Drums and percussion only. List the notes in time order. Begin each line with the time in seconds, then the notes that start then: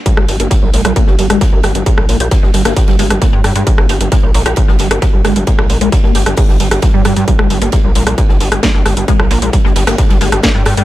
0.06 kick, closed hi-hat, ride
0.17 cross-stick
0.28 open hi-hat, ride
0.40 closed hi-hat, ride
0.51 kick, snare, closed hi-hat, ride
0.74 open hi-hat, ride
0.85 cross-stick, closed hi-hat
0.96 kick, closed hi-hat, ride
1.07 snare
1.19 open hi-hat, ride
1.30 cross-stick, closed hi-hat
1.41 kick, snare, closed hi-hat, ride
1.63 cross-stick, snare, open hi-hat, ride
1.75 closed hi-hat
1.86 kick, closed hi-hat, ride
1.98 cross-stick
2.09 open hi-hat, ride
2.20 closed hi-hat
2.31 kick, snare, closed hi-hat, ride
2.43 snare
2.54 snare, open hi-hat, ride
2.65 cross-stick, snare, closed hi-hat, ride
2.77 kick, snare, closed hi-hat, ride
2.88 snare, ride
2.99 open hi-hat, ride
3.10 cross-stick, closed hi-hat
3.22 kick, snare, closed hi-hat, ride
3.44 cross-stick, open hi-hat, ride
3.56 closed hi-hat
3.67 kick, closed hi-hat, ride
3.78 cross-stick
3.89 open hi-hat, ride
4.01 closed hi-hat, ride
4.12 kick, snare, closed hi-hat, ride
4.34 open hi-hat, ride
4.46 cross-stick, closed hi-hat
4.56 kick, closed hi-hat, ride
4.68 snare
4.79 open hi-hat, ride
4.91 cross-stick, closed hi-hat
5.02 kick, snare, closed hi-hat, ride
5.24 cross-stick, snare, open hi-hat, ride
5.36 closed hi-hat
5.47 kick, closed hi-hat, ride
5.59 cross-stick
5.69 open hi-hat, ride
5.81 closed hi-hat
5.92 kick, snare, closed hi-hat, ride
6.04 snare
6.15 open hi-hat, ride
6.26 cross-stick, closed hi-hat
6.37 kick, closed hi-hat, open hi-hat
6.49 snare
6.60 open hi-hat, ride
6.71 cross-stick, closed hi-hat
6.82 kick, snare, closed hi-hat, ride
7.05 cross-stick, open hi-hat, ride
7.16 closed hi-hat
7.28 kick, closed hi-hat, ride
7.39 cross-stick
7.50 open hi-hat, ride
7.62 closed hi-hat, ride
7.72 kick, snare, closed hi-hat, ride
7.95 open hi-hat, ride
8.07 cross-stick, closed hi-hat
8.18 kick, closed hi-hat, ride
8.29 snare
8.40 open hi-hat, ride
8.52 cross-stick, closed hi-hat
8.63 kick, snare, closed hi-hat, ride
8.85 cross-stick, snare, open hi-hat, ride
8.97 closed hi-hat
9.08 kick, closed hi-hat, ride
9.20 cross-stick
9.31 open hi-hat, ride
9.42 closed hi-hat
9.53 kick, snare, closed hi-hat, ride
9.65 snare
9.76 snare, open hi-hat, ride
9.87 cross-stick, snare, closed hi-hat, ride
9.98 kick, snare, closed hi-hat, ride
10.09 snare, ride
10.21 open hi-hat, ride
10.32 cross-stick, closed hi-hat
10.43 kick, snare, closed hi-hat, ride
10.65 cross-stick, open hi-hat, ride
10.77 closed hi-hat